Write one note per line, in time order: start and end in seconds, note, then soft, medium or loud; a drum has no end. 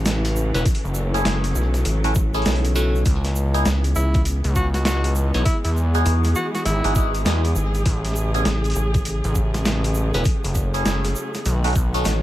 0.00 0.51 A1 loud
0.00 5.42 C#3 medium
0.00 5.42 E3 medium
0.00 0.62 G#3 medium
0.00 0.63 A3 medium
0.06 snare loud
0.06 closed hi-hat medium
0.06 shaker medium
0.25 closed hi-hat medium
0.25 shaker soft
0.36 shaker medium
0.54 0.64 E1 medium
0.54 0.64 B3 medium
0.54 0.64 C#4 medium
0.54 0.64 E4 medium
0.54 0.64 B4 medium
0.54 closed hi-hat soft
0.54 shaker soft
0.65 3.03 F#3 medium
0.65 3.03 A3 medium
0.65 kick loud
0.65 closed hi-hat medium
0.65 shaker medium
0.75 closed hi-hat soft
0.84 1.24 F#1 medium
0.84 shaker soft
0.95 shaker medium
1.14 2.00 A3 medium
1.14 2.00 C#4 medium
1.14 2.00 E4 medium
1.14 2.00 G#4 medium
1.14 closed hi-hat soft
1.14 shaker soft
1.25 1.54 F#1 loud
1.25 snare loud
1.25 closed hi-hat medium
1.25 shaker medium
1.44 snare soft
1.44 closed hi-hat medium
1.44 shaker soft
1.51 snare soft
1.55 1.84 B1 loud
1.55 shaker loud
1.62 snare soft
1.74 snare soft
1.74 closed hi-hat soft
1.74 shaker soft
1.85 2.14 A1 loud
1.85 closed hi-hat medium
1.85 shaker medium
2.04 2.14 A3 medium
2.04 2.14 C#4 medium
2.04 2.14 E4 medium
2.04 2.14 F#4 medium
2.04 closed hi-hat medium
2.04 shaker soft
2.15 2.44 A1 loud
2.15 kick loud
2.15 shaker loud
2.34 2.73 A3 medium
2.34 2.73 C#4 medium
2.34 2.73 E4 medium
2.34 2.73 G#4 loud
2.34 closed hi-hat soft
2.34 shaker soft
2.42 snare loud
2.42 closed hi-hat soft
2.42 shaker medium
2.46 3.04 B1 loud
2.46 closed hi-hat medium
2.52 closed hi-hat soft
2.56 closed hi-hat soft
2.65 closed hi-hat medium
2.65 shaker soft
2.76 3.04 A3 medium
2.76 3.04 C#4 medium
2.76 3.04 E4 medium
2.76 3.04 F#4 medium
2.76 shaker loud
2.95 shaker soft
3.05 3.64 C#2 loud
3.05 10.22 G#3 medium
3.05 7.82 B3 medium
3.05 kick loud
3.05 closed hi-hat medium
3.05 shaker medium
3.24 snare soft
3.24 closed hi-hat medium
3.24 shaker soft
3.36 shaker medium
3.54 3.68 B3 medium
3.54 3.68 D#4 medium
3.54 3.68 E4 medium
3.54 3.68 G#4 medium
3.54 closed hi-hat soft
3.54 shaker soft
3.65 3.94 C#2 loud
3.65 snare loud
3.65 closed hi-hat medium
3.65 shaker medium
3.84 closed hi-hat soft
3.84 shaker soft
3.95 4.42 C#2 loud
3.95 4.22 E4 medium
3.95 shaker medium
4.14 kick loud
4.14 closed hi-hat soft
4.14 shaker soft
4.25 closed hi-hat medium
4.25 shaker medium
4.44 5.31 C#2 loud
4.44 closed hi-hat soft
4.44 shaker soft
4.56 4.68 F#4 medium
4.56 kick medium
4.56 shaker medium
4.74 4.82 F#4 medium
4.74 snare medium
4.74 closed hi-hat soft
4.74 shaker soft
4.85 5.12 F#4 medium
4.85 snare loud
4.85 closed hi-hat medium
4.85 shaker medium
5.04 closed hi-hat medium
5.04 shaker soft
5.16 shaker medium
5.34 5.44 B1 medium
5.34 5.44 B3 medium
5.34 5.44 D#4 medium
5.34 5.44 E4 medium
5.34 5.44 C#5 medium
5.34 closed hi-hat soft
5.34 shaker soft
5.45 7.83 E3 medium
5.45 5.58 E4 medium
5.45 11.42 G#4 loud
5.45 kick loud
5.45 closed hi-hat medium
5.45 shaker medium
5.64 6.04 E2 medium
5.64 5.71 E4 medium
5.64 closed hi-hat medium
5.64 shaker soft
5.77 shaker medium
5.95 6.80 B3 medium
5.95 6.80 D#4 medium
5.95 6.80 F#4 medium
5.95 6.80 G#4 medium
5.95 closed hi-hat soft
5.95 shaker soft
6.06 6.34 E2 loud
6.06 closed hi-hat medium
6.06 shaker medium
6.24 snare soft
6.24 closed hi-hat medium
6.24 shaker soft
6.35 6.48 F#4 medium
6.35 shaker medium
6.55 6.62 F#4 medium
6.55 snare soft
6.55 closed hi-hat soft
6.55 shaker soft
6.65 6.81 G#1 loud
6.65 7.15 E4 loud
6.65 closed hi-hat medium
6.65 shaker medium
6.84 7.24 G#1 medium
6.84 6.94 B3 medium
6.84 6.94 D#4 medium
6.84 6.94 F#4 medium
6.84 6.94 G#4 medium
6.84 closed hi-hat medium
6.84 shaker soft
6.95 7.23 B3 medium
6.95 7.23 D#4 medium
6.95 7.23 F#4 medium
6.95 7.23 G#4 medium
6.95 kick loud
6.95 shaker loud
7.15 closed hi-hat soft
7.15 shaker soft
7.25 7.54 E2 loud
7.25 7.46 B3 medium
7.25 7.46 D#4 medium
7.25 7.46 F#4 medium
7.25 7.46 G#4 medium
7.25 snare loud
7.25 closed hi-hat medium
7.25 shaker medium
7.45 closed hi-hat medium
7.45 shaker soft
7.55 7.84 G#1 loud
7.55 shaker loud
7.74 closed hi-hat soft
7.74 shaker soft
7.85 8.44 A1 loud
7.85 11.42 C#3 medium
7.85 12.22 A3 medium
7.85 kick loud
7.85 closed hi-hat medium
7.85 shaker soft
8.05 snare soft
8.05 closed hi-hat medium
8.05 shaker soft
8.12 snare soft
8.12 shaker medium
8.34 8.48 B3 medium
8.34 8.48 C#4 medium
8.34 8.48 E4 medium
8.34 8.48 G#4 medium
8.34 closed hi-hat soft
8.34 shaker soft
8.45 8.74 A1 loud
8.45 snare loud
8.45 closed hi-hat medium
8.45 shaker medium
8.64 closed hi-hat soft
8.64 shaker soft
8.66 closed hi-hat soft
8.70 closed hi-hat soft
8.72 closed hi-hat soft
8.74 9.22 A1 loud
8.74 closed hi-hat soft
8.74 shaker medium
8.94 kick loud
8.94 closed hi-hat soft
8.94 shaker soft
9.05 closed hi-hat medium
9.05 shaker soft
9.24 10.11 A1 loud
9.24 closed hi-hat medium
9.24 shaker soft
9.35 kick medium
9.35 shaker medium
9.54 snare medium
9.54 closed hi-hat soft
9.54 shaker soft
9.65 snare loud
9.65 closed hi-hat medium
9.65 shaker soft
9.84 closed hi-hat medium
9.84 shaker soft
9.94 shaker medium
10.14 10.24 E1 medium
10.14 10.24 B3 medium
10.14 10.24 C#4 medium
10.14 10.24 E4 medium
10.14 10.24 B4 medium
10.14 closed hi-hat soft
10.14 shaker soft
10.25 11.45 F#3 medium
10.25 kick loud
10.25 closed hi-hat medium
10.25 shaker soft
10.44 10.84 F#1 medium
10.44 closed hi-hat medium
10.44 shaker soft
10.55 kick medium
10.55 shaker medium
10.74 11.44 A3 medium
10.74 11.44 C#4 medium
10.74 11.44 E4 medium
10.74 11.44 G#4 medium
10.74 closed hi-hat soft
10.74 shaker soft
10.85 11.14 F#1 loud
10.85 snare loud
10.85 closed hi-hat medium
10.85 shaker soft
11.04 snare soft
11.04 closed hi-hat medium
11.04 shaker soft
11.16 shaker medium
11.34 snare soft
11.34 closed hi-hat soft
11.34 shaker soft
11.45 11.74 B1 loud
11.45 12.22 D#3 medium
11.45 12.22 B3 medium
11.45 12.22 F#4 medium
11.45 closed hi-hat medium
11.45 shaker medium
11.64 11.74 A3 medium
11.64 11.74 C#4 medium
11.64 11.74 D#4 medium
11.64 11.74 F#4 medium
11.64 closed hi-hat medium
11.64 shaker soft
11.68 closed hi-hat soft
11.70 closed hi-hat soft
11.73 12.04 B1 medium
11.73 kick loud
11.73 closed hi-hat soft
11.73 shaker medium
11.94 12.22 A3 medium
11.94 12.22 C#4 medium
11.94 12.22 D#4 medium
11.94 12.22 F#4 loud
11.94 closed hi-hat soft
11.94 shaker soft
12.05 12.21 A1 loud
12.05 snare medium
12.05 closed hi-hat medium
12.05 shaker medium